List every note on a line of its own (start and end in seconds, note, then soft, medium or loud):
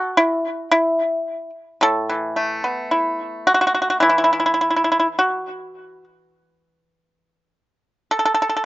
0.00 0.16 F#4 medium
0.17 0.68 E4 medium
0.71 1.50 E4 medium
1.81 2.64 A2 medium
1.81 2.62 A4 medium
2.10 3.47 E3 soft
2.36 4.57 A3 soft
2.62 4.87 B3 soft
2.62 2.76 G#4 medium
2.76 2.91 G4 medium
2.91 4.01 E4 soft
3.47 3.53 F#4 medium
3.54 3.60 F#4 medium
3.61 3.66 F#4 medium
3.67 3.73 F#4 medium
3.74 3.81 F#4 medium
3.82 3.88 F#4 soft
3.90 3.96 F#4 medium
4.00 7.52 E3 medium
4.00 4.08 E4 medium
4.09 4.16 E4 medium
4.18 4.23 E4 medium
4.24 4.30 E4 soft
4.33 4.38 E4 soft
4.40 4.45 E4 soft
4.46 4.52 E4 soft
4.54 4.60 E4 soft
4.61 4.67 E4 soft
4.70 4.75 E4 soft
4.76 4.83 E4 soft
4.84 4.91 E4 soft
4.92 4.98 E4 soft
5.00 5.06 E4 soft
5.19 6.04 F#4 medium
8.11 8.17 A4 medium
8.19 8.24 A4 medium
8.25 8.32 A4 medium
8.34 8.40 A4 medium
8.42 8.48 A4 medium
8.49 8.55 A4 soft
8.57 8.62 A4 soft